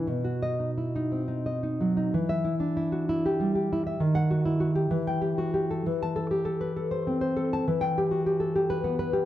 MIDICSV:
0, 0, Header, 1, 2, 480
1, 0, Start_track
1, 0, Key_signature, 1, "minor"
1, 0, Tempo, 690449
1, 41, Time_signature, 6, 3, 24, 8
1, 1481, Tempo, 638978
1, 1961, Tempo, 615385
1, 4841, Tempo, 590551
1, 7109, End_track
2, 0, Start_track
2, 0, Title_t, "Nylon-string guitar"
2, 0, Program_c, 0, 24
2, 51, Note_on_c, 0, 47, 64
2, 170, Note_on_c, 0, 66, 50
2, 296, Note_on_c, 0, 75, 65
2, 413, Note_on_c, 0, 63, 45
2, 486, Note_off_c, 0, 75, 0
2, 540, Note_on_c, 0, 64, 42
2, 657, Note_off_c, 0, 63, 0
2, 665, Note_on_c, 0, 63, 50
2, 777, Note_on_c, 0, 60, 38
2, 880, Note_off_c, 0, 63, 0
2, 889, Note_off_c, 0, 66, 0
2, 889, Note_on_c, 0, 63, 50
2, 1012, Note_off_c, 0, 64, 0
2, 1015, Note_on_c, 0, 75, 50
2, 1126, Note_off_c, 0, 63, 0
2, 1134, Note_on_c, 0, 63, 47
2, 1255, Note_on_c, 0, 54, 45
2, 1361, Note_off_c, 0, 63, 0
2, 1369, Note_on_c, 0, 63, 49
2, 1459, Note_off_c, 0, 47, 0
2, 1483, Note_off_c, 0, 63, 0
2, 1486, Note_off_c, 0, 54, 0
2, 1487, Note_off_c, 0, 60, 0
2, 1487, Note_off_c, 0, 75, 0
2, 1489, Note_on_c, 0, 52, 74
2, 1604, Note_on_c, 0, 76, 75
2, 1718, Note_on_c, 0, 64, 60
2, 1796, Note_off_c, 0, 76, 0
2, 1834, Note_on_c, 0, 62, 51
2, 1951, Note_off_c, 0, 64, 0
2, 1960, Note_on_c, 0, 64, 54
2, 2080, Note_on_c, 0, 66, 57
2, 2203, Note_off_c, 0, 64, 0
2, 2213, Note_on_c, 0, 64, 58
2, 2341, Note_on_c, 0, 67, 58
2, 2451, Note_on_c, 0, 55, 57
2, 2562, Note_off_c, 0, 62, 0
2, 2562, Note_off_c, 0, 67, 0
2, 2571, Note_on_c, 0, 67, 58
2, 2698, Note_off_c, 0, 64, 0
2, 2707, Note_on_c, 0, 64, 59
2, 2806, Note_off_c, 0, 66, 0
2, 2814, Note_off_c, 0, 64, 0
2, 2817, Note_on_c, 0, 76, 64
2, 2900, Note_off_c, 0, 52, 0
2, 2923, Note_on_c, 0, 51, 78
2, 2930, Note_off_c, 0, 55, 0
2, 2930, Note_off_c, 0, 67, 0
2, 2932, Note_off_c, 0, 76, 0
2, 3038, Note_on_c, 0, 78, 79
2, 3160, Note_on_c, 0, 66, 64
2, 3230, Note_off_c, 0, 78, 0
2, 3276, Note_on_c, 0, 64, 54
2, 3381, Note_off_c, 0, 66, 0
2, 3390, Note_on_c, 0, 66, 65
2, 3506, Note_off_c, 0, 66, 0
2, 3509, Note_on_c, 0, 67, 62
2, 3609, Note_off_c, 0, 51, 0
2, 3629, Note_on_c, 0, 52, 78
2, 3630, Note_off_c, 0, 64, 0
2, 3630, Note_off_c, 0, 67, 0
2, 3759, Note_on_c, 0, 79, 82
2, 3869, Note_on_c, 0, 67, 59
2, 3950, Note_off_c, 0, 79, 0
2, 3997, Note_on_c, 0, 66, 52
2, 4112, Note_off_c, 0, 67, 0
2, 4121, Note_on_c, 0, 67, 62
2, 4252, Note_on_c, 0, 69, 57
2, 4341, Note_off_c, 0, 52, 0
2, 4366, Note_off_c, 0, 66, 0
2, 4366, Note_off_c, 0, 67, 0
2, 4370, Note_off_c, 0, 69, 0
2, 4374, Note_on_c, 0, 52, 79
2, 4501, Note_on_c, 0, 81, 84
2, 4606, Note_on_c, 0, 69, 65
2, 4685, Note_off_c, 0, 81, 0
2, 4722, Note_on_c, 0, 67, 57
2, 4824, Note_off_c, 0, 69, 0
2, 4833, Note_on_c, 0, 69, 69
2, 4960, Note_on_c, 0, 71, 63
2, 5078, Note_off_c, 0, 69, 0
2, 5088, Note_on_c, 0, 69, 62
2, 5204, Note_off_c, 0, 71, 0
2, 5207, Note_on_c, 0, 72, 66
2, 5336, Note_on_c, 0, 60, 59
2, 5442, Note_off_c, 0, 72, 0
2, 5443, Note_off_c, 0, 67, 0
2, 5451, Note_on_c, 0, 72, 66
2, 5566, Note_off_c, 0, 69, 0
2, 5576, Note_on_c, 0, 69, 71
2, 5711, Note_on_c, 0, 81, 75
2, 5779, Note_off_c, 0, 52, 0
2, 5810, Note_off_c, 0, 72, 0
2, 5811, Note_off_c, 0, 69, 0
2, 5813, Note_off_c, 0, 60, 0
2, 5819, Note_off_c, 0, 81, 0
2, 5829, Note_on_c, 0, 52, 78
2, 5938, Note_on_c, 0, 79, 81
2, 6074, Note_on_c, 0, 67, 77
2, 6123, Note_off_c, 0, 79, 0
2, 6182, Note_on_c, 0, 66, 62
2, 6296, Note_off_c, 0, 67, 0
2, 6306, Note_on_c, 0, 67, 62
2, 6416, Note_on_c, 0, 69, 66
2, 6534, Note_off_c, 0, 67, 0
2, 6544, Note_on_c, 0, 67, 69
2, 6660, Note_on_c, 0, 71, 75
2, 6772, Note_off_c, 0, 69, 0
2, 6775, Note_on_c, 0, 59, 66
2, 6887, Note_off_c, 0, 71, 0
2, 6891, Note_off_c, 0, 66, 0
2, 6897, Note_on_c, 0, 71, 71
2, 7002, Note_off_c, 0, 67, 0
2, 7012, Note_on_c, 0, 67, 78
2, 7109, Note_off_c, 0, 52, 0
2, 7109, Note_off_c, 0, 59, 0
2, 7109, Note_off_c, 0, 67, 0
2, 7109, Note_off_c, 0, 71, 0
2, 7109, End_track
0, 0, End_of_file